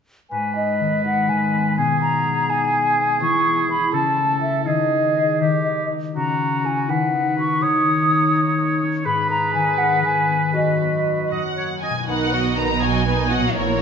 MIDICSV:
0, 0, Header, 1, 10, 480
1, 0, Start_track
1, 0, Key_signature, 5, "minor"
1, 0, Tempo, 483481
1, 308, Time_signature, 6, 3, 24, 8
1, 4625, Tempo, 497512
1, 6072, Key_signature, 5, "major"
1, 7025, Tempo, 478851
1, 9425, Tempo, 508044
1, 11825, Tempo, 491803
1, 13522, End_track
2, 0, Start_track
2, 0, Title_t, "Flute"
2, 0, Program_c, 0, 73
2, 303, Note_on_c, 0, 80, 52
2, 532, Note_off_c, 0, 80, 0
2, 556, Note_on_c, 0, 75, 45
2, 1036, Note_off_c, 0, 75, 0
2, 1050, Note_on_c, 0, 78, 53
2, 1282, Note_on_c, 0, 80, 45
2, 1297, Note_off_c, 0, 78, 0
2, 1756, Note_off_c, 0, 80, 0
2, 1762, Note_on_c, 0, 80, 56
2, 1993, Note_off_c, 0, 80, 0
2, 1999, Note_on_c, 0, 82, 61
2, 2481, Note_on_c, 0, 80, 65
2, 2496, Note_off_c, 0, 82, 0
2, 3191, Note_off_c, 0, 80, 0
2, 3197, Note_on_c, 0, 85, 68
2, 3658, Note_off_c, 0, 85, 0
2, 3677, Note_on_c, 0, 83, 55
2, 3902, Note_off_c, 0, 83, 0
2, 3911, Note_on_c, 0, 81, 54
2, 4375, Note_off_c, 0, 81, 0
2, 4385, Note_on_c, 0, 76, 45
2, 4621, Note_off_c, 0, 76, 0
2, 4627, Note_on_c, 0, 75, 45
2, 5810, Note_off_c, 0, 75, 0
2, 6077, Note_on_c, 0, 82, 54
2, 6551, Note_on_c, 0, 80, 45
2, 6566, Note_off_c, 0, 82, 0
2, 6790, Note_on_c, 0, 78, 44
2, 6805, Note_off_c, 0, 80, 0
2, 7265, Note_off_c, 0, 78, 0
2, 7273, Note_on_c, 0, 85, 52
2, 7501, Note_on_c, 0, 87, 57
2, 7516, Note_off_c, 0, 85, 0
2, 8698, Note_off_c, 0, 87, 0
2, 8940, Note_on_c, 0, 83, 72
2, 9163, Note_off_c, 0, 83, 0
2, 9188, Note_on_c, 0, 82, 67
2, 9422, Note_off_c, 0, 82, 0
2, 9429, Note_on_c, 0, 80, 67
2, 9654, Note_on_c, 0, 78, 61
2, 9668, Note_off_c, 0, 80, 0
2, 9888, Note_off_c, 0, 78, 0
2, 9902, Note_on_c, 0, 80, 59
2, 10368, Note_off_c, 0, 80, 0
2, 10384, Note_on_c, 0, 75, 46
2, 11091, Note_off_c, 0, 75, 0
2, 13522, End_track
3, 0, Start_track
3, 0, Title_t, "Violin section"
3, 0, Program_c, 1, 48
3, 11101, Note_on_c, 1, 78, 41
3, 11550, Note_off_c, 1, 78, 0
3, 11584, Note_on_c, 1, 80, 42
3, 11824, Note_off_c, 1, 80, 0
3, 11832, Note_on_c, 1, 78, 52
3, 12304, Note_off_c, 1, 78, 0
3, 12315, Note_on_c, 1, 82, 49
3, 12548, Note_off_c, 1, 82, 0
3, 12553, Note_on_c, 1, 80, 43
3, 13023, Note_on_c, 1, 78, 50
3, 13027, Note_off_c, 1, 80, 0
3, 13261, Note_on_c, 1, 73, 51
3, 13263, Note_off_c, 1, 78, 0
3, 13522, Note_off_c, 1, 73, 0
3, 13522, End_track
4, 0, Start_track
4, 0, Title_t, "Oboe"
4, 0, Program_c, 2, 68
4, 311, Note_on_c, 2, 71, 35
4, 1727, Note_off_c, 2, 71, 0
4, 1767, Note_on_c, 2, 68, 48
4, 3907, Note_on_c, 2, 69, 39
4, 3921, Note_off_c, 2, 68, 0
4, 4628, Note_on_c, 2, 68, 32
4, 4643, Note_off_c, 2, 69, 0
4, 5344, Note_off_c, 2, 68, 0
4, 5350, Note_on_c, 2, 67, 27
4, 5823, Note_off_c, 2, 67, 0
4, 6066, Note_on_c, 2, 66, 33
4, 6786, Note_on_c, 2, 71, 33
4, 6801, Note_off_c, 2, 66, 0
4, 7507, Note_on_c, 2, 73, 38
4, 7522, Note_off_c, 2, 71, 0
4, 8936, Note_on_c, 2, 71, 55
4, 8951, Note_off_c, 2, 73, 0
4, 11094, Note_off_c, 2, 71, 0
4, 11100, Note_on_c, 2, 75, 37
4, 11208, Note_off_c, 2, 75, 0
4, 11341, Note_on_c, 2, 73, 27
4, 11450, Note_off_c, 2, 73, 0
4, 11586, Note_on_c, 2, 75, 30
4, 11694, Note_off_c, 2, 75, 0
4, 13522, End_track
5, 0, Start_track
5, 0, Title_t, "Violin section"
5, 0, Program_c, 3, 48
5, 11825, Note_on_c, 3, 63, 30
5, 11826, Note_on_c, 3, 71, 32
5, 12051, Note_off_c, 3, 63, 0
5, 12051, Note_off_c, 3, 71, 0
5, 12068, Note_on_c, 3, 75, 33
5, 12070, Note_on_c, 3, 66, 30
5, 12310, Note_off_c, 3, 75, 0
5, 12311, Note_on_c, 3, 63, 31
5, 12311, Note_on_c, 3, 71, 30
5, 12312, Note_off_c, 3, 66, 0
5, 12545, Note_on_c, 3, 75, 35
5, 12549, Note_on_c, 3, 66, 34
5, 12551, Note_off_c, 3, 63, 0
5, 12551, Note_off_c, 3, 71, 0
5, 12784, Note_on_c, 3, 63, 31
5, 12786, Note_off_c, 3, 75, 0
5, 12787, Note_off_c, 3, 66, 0
5, 12791, Note_on_c, 3, 71, 29
5, 13007, Note_off_c, 3, 63, 0
5, 13010, Note_off_c, 3, 71, 0
5, 13020, Note_on_c, 3, 66, 32
5, 13023, Note_on_c, 3, 75, 33
5, 13260, Note_on_c, 3, 70, 30
5, 13262, Note_off_c, 3, 66, 0
5, 13262, Note_on_c, 3, 73, 35
5, 13264, Note_off_c, 3, 75, 0
5, 13484, Note_off_c, 3, 70, 0
5, 13485, Note_off_c, 3, 73, 0
5, 13522, End_track
6, 0, Start_track
6, 0, Title_t, "Clarinet"
6, 0, Program_c, 4, 71
6, 320, Note_on_c, 4, 56, 38
6, 1731, Note_off_c, 4, 56, 0
6, 1770, Note_on_c, 4, 59, 51
6, 3167, Note_off_c, 4, 59, 0
6, 3197, Note_on_c, 4, 64, 43
6, 3889, Note_off_c, 4, 64, 0
6, 3907, Note_on_c, 4, 61, 37
6, 4624, Note_on_c, 4, 63, 33
6, 4639, Note_off_c, 4, 61, 0
6, 5833, Note_off_c, 4, 63, 0
6, 6061, Note_on_c, 4, 61, 39
6, 6775, Note_on_c, 4, 63, 42
6, 6790, Note_off_c, 4, 61, 0
6, 8931, Note_off_c, 4, 63, 0
6, 8942, Note_on_c, 4, 68, 54
6, 10345, Note_off_c, 4, 68, 0
6, 10373, Note_on_c, 4, 66, 37
6, 11560, Note_off_c, 4, 66, 0
6, 13522, End_track
7, 0, Start_track
7, 0, Title_t, "Harp"
7, 0, Program_c, 5, 46
7, 309, Note_on_c, 5, 44, 34
7, 549, Note_on_c, 5, 63, 28
7, 793, Note_on_c, 5, 51, 26
7, 1027, Note_off_c, 5, 63, 0
7, 1039, Note_on_c, 5, 63, 33
7, 1273, Note_off_c, 5, 51, 0
7, 1285, Note_on_c, 5, 51, 30
7, 1526, Note_on_c, 5, 59, 36
7, 1763, Note_on_c, 5, 47, 43
7, 1782, Note_off_c, 5, 51, 0
7, 1784, Note_off_c, 5, 44, 0
7, 1984, Note_off_c, 5, 63, 0
7, 1996, Note_on_c, 5, 63, 35
7, 2237, Note_on_c, 5, 56, 34
7, 2466, Note_off_c, 5, 63, 0
7, 2477, Note_on_c, 5, 63, 43
7, 2703, Note_off_c, 5, 56, 0
7, 2715, Note_on_c, 5, 56, 37
7, 2939, Note_off_c, 5, 59, 0
7, 2951, Note_on_c, 5, 59, 37
7, 3189, Note_on_c, 5, 52, 44
7, 3210, Note_off_c, 5, 63, 0
7, 3211, Note_off_c, 5, 47, 0
7, 3431, Note_on_c, 5, 64, 32
7, 3652, Note_off_c, 5, 64, 0
7, 3664, Note_on_c, 5, 64, 30
7, 3668, Note_on_c, 5, 68, 33
7, 3893, Note_on_c, 5, 49, 41
7, 3918, Note_off_c, 5, 52, 0
7, 3918, Note_off_c, 5, 56, 0
7, 3918, Note_off_c, 5, 59, 0
7, 3921, Note_off_c, 5, 68, 0
7, 4136, Note_on_c, 5, 57, 29
7, 4365, Note_off_c, 5, 64, 0
7, 4377, Note_on_c, 5, 64, 25
7, 4382, Note_on_c, 5, 69, 28
7, 4624, Note_on_c, 5, 51, 30
7, 4639, Note_off_c, 5, 49, 0
7, 4641, Note_off_c, 5, 57, 0
7, 4641, Note_off_c, 5, 64, 0
7, 4643, Note_off_c, 5, 69, 0
7, 4863, Note_on_c, 5, 63, 24
7, 5092, Note_off_c, 5, 63, 0
7, 5103, Note_on_c, 5, 63, 22
7, 5108, Note_on_c, 5, 68, 26
7, 5334, Note_off_c, 5, 51, 0
7, 5346, Note_on_c, 5, 51, 30
7, 5369, Note_off_c, 5, 68, 0
7, 5582, Note_off_c, 5, 63, 0
7, 5593, Note_on_c, 5, 63, 24
7, 5821, Note_off_c, 5, 63, 0
7, 5833, Note_on_c, 5, 63, 24
7, 5838, Note_on_c, 5, 67, 25
7, 6074, Note_on_c, 5, 49, 32
7, 6090, Note_off_c, 5, 51, 0
7, 6091, Note_off_c, 5, 63, 0
7, 6093, Note_off_c, 5, 67, 0
7, 6310, Note_on_c, 5, 61, 26
7, 6546, Note_on_c, 5, 64, 26
7, 6553, Note_on_c, 5, 66, 28
7, 6785, Note_on_c, 5, 51, 35
7, 6806, Note_off_c, 5, 64, 0
7, 6807, Note_off_c, 5, 49, 0
7, 6807, Note_off_c, 5, 61, 0
7, 7024, Note_on_c, 5, 63, 29
7, 7252, Note_off_c, 5, 63, 0
7, 7256, Note_off_c, 5, 66, 0
7, 7264, Note_on_c, 5, 63, 32
7, 7269, Note_on_c, 5, 66, 33
7, 7491, Note_off_c, 5, 51, 0
7, 7503, Note_on_c, 5, 51, 38
7, 7524, Note_off_c, 5, 66, 0
7, 7729, Note_off_c, 5, 63, 0
7, 7741, Note_on_c, 5, 63, 29
7, 7986, Note_on_c, 5, 58, 33
7, 8213, Note_off_c, 5, 63, 0
7, 8225, Note_on_c, 5, 63, 39
7, 8449, Note_off_c, 5, 58, 0
7, 8461, Note_on_c, 5, 58, 38
7, 8696, Note_on_c, 5, 61, 41
7, 8936, Note_on_c, 5, 44, 49
7, 8955, Note_off_c, 5, 61, 0
7, 8957, Note_off_c, 5, 51, 0
7, 8957, Note_off_c, 5, 58, 0
7, 9168, Note_off_c, 5, 63, 0
7, 9180, Note_on_c, 5, 63, 41
7, 9423, Note_on_c, 5, 51, 34
7, 9644, Note_off_c, 5, 63, 0
7, 9655, Note_on_c, 5, 63, 38
7, 9873, Note_off_c, 5, 51, 0
7, 9884, Note_on_c, 5, 51, 35
7, 10123, Note_on_c, 5, 59, 36
7, 10371, Note_on_c, 5, 42, 35
7, 10388, Note_off_c, 5, 51, 0
7, 10390, Note_off_c, 5, 44, 0
7, 10600, Note_off_c, 5, 59, 0
7, 10611, Note_on_c, 5, 59, 25
7, 10845, Note_off_c, 5, 63, 0
7, 10856, Note_on_c, 5, 63, 23
7, 10860, Note_on_c, 5, 66, 26
7, 11085, Note_off_c, 5, 42, 0
7, 11096, Note_on_c, 5, 42, 33
7, 11116, Note_off_c, 5, 59, 0
7, 11117, Note_off_c, 5, 63, 0
7, 11338, Note_on_c, 5, 58, 23
7, 11576, Note_off_c, 5, 66, 0
7, 11583, Note_on_c, 5, 61, 24
7, 11587, Note_on_c, 5, 66, 27
7, 11652, Note_on_c, 5, 47, 30
7, 11695, Note_on_c, 5, 59, 27
7, 11736, Note_on_c, 5, 63, 27
7, 11766, Note_off_c, 5, 66, 0
7, 11778, Note_on_c, 5, 66, 27
7, 11841, Note_off_c, 5, 42, 0
7, 11842, Note_off_c, 5, 58, 0
7, 11842, Note_off_c, 5, 61, 0
7, 13087, Note_on_c, 5, 46, 32
7, 13132, Note_on_c, 5, 61, 27
7, 13176, Note_on_c, 5, 64, 27
7, 13196, Note_off_c, 5, 47, 0
7, 13208, Note_off_c, 5, 66, 0
7, 13218, Note_off_c, 5, 59, 0
7, 13220, Note_on_c, 5, 66, 26
7, 13239, Note_off_c, 5, 63, 0
7, 13522, Note_off_c, 5, 46, 0
7, 13522, Note_off_c, 5, 61, 0
7, 13522, Note_off_c, 5, 64, 0
7, 13522, Note_off_c, 5, 66, 0
7, 13522, End_track
8, 0, Start_track
8, 0, Title_t, "Viola section"
8, 0, Program_c, 6, 48
8, 11819, Note_on_c, 6, 51, 33
8, 11822, Note_on_c, 6, 63, 31
8, 12048, Note_off_c, 6, 51, 0
8, 12049, Note_off_c, 6, 63, 0
8, 12068, Note_on_c, 6, 59, 27
8, 12069, Note_on_c, 6, 54, 28
8, 12309, Note_on_c, 6, 63, 29
8, 12310, Note_off_c, 6, 59, 0
8, 12310, Note_on_c, 6, 51, 29
8, 12311, Note_off_c, 6, 54, 0
8, 12546, Note_on_c, 6, 59, 28
8, 12547, Note_on_c, 6, 54, 31
8, 12550, Note_off_c, 6, 51, 0
8, 12550, Note_off_c, 6, 63, 0
8, 12786, Note_off_c, 6, 59, 0
8, 12787, Note_off_c, 6, 54, 0
8, 12787, Note_on_c, 6, 51, 31
8, 12787, Note_on_c, 6, 63, 34
8, 13009, Note_off_c, 6, 51, 0
8, 13009, Note_off_c, 6, 63, 0
8, 13022, Note_on_c, 6, 54, 33
8, 13023, Note_on_c, 6, 59, 30
8, 13263, Note_off_c, 6, 54, 0
8, 13263, Note_on_c, 6, 52, 33
8, 13263, Note_on_c, 6, 64, 33
8, 13264, Note_off_c, 6, 59, 0
8, 13486, Note_off_c, 6, 52, 0
8, 13486, Note_off_c, 6, 64, 0
8, 13522, End_track
9, 0, Start_track
9, 0, Title_t, "Cello section"
9, 0, Program_c, 7, 48
9, 11824, Note_on_c, 7, 47, 38
9, 13227, Note_off_c, 7, 47, 0
9, 13263, Note_on_c, 7, 46, 39
9, 13522, Note_off_c, 7, 46, 0
9, 13522, End_track
10, 0, Start_track
10, 0, Title_t, "Double bass section"
10, 0, Program_c, 8, 48
10, 11824, Note_on_c, 8, 35, 37
10, 13226, Note_off_c, 8, 35, 0
10, 13262, Note_on_c, 8, 34, 40
10, 13522, Note_off_c, 8, 34, 0
10, 13522, End_track
0, 0, End_of_file